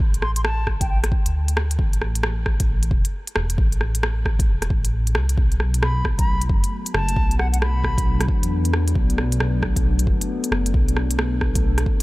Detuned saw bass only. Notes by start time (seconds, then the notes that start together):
0.00 A1
0.67 A1
1.26 D2
1.79 A1
2.46 A1
2.91 E1
3.36 E1
3.58 A1
4.26 A1
4.48 E1
4.70 A1
5.15 C2
5.38 B1
6.05 B1
6.50 F#1
6.94 F#1
7.16 B1
7.84 B1
8.42 E2
8.96 B1
9.63 B1
10.07 F#1
10.51 F#1
10.74 B1
11.42 B1